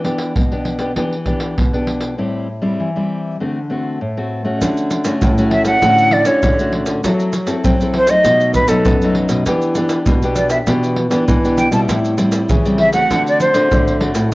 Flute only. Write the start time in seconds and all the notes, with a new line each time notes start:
5.52 E5
5.66 F#5
6.13 D5
6.27 C#5
7.96 C5
8.10 D#5
8.54 B4
8.69 A4
10.37 D5
10.51 E5
11.58 G5
11.73 A5
12.80 E5
12.93 F#5
13.28 D5
13.41 C5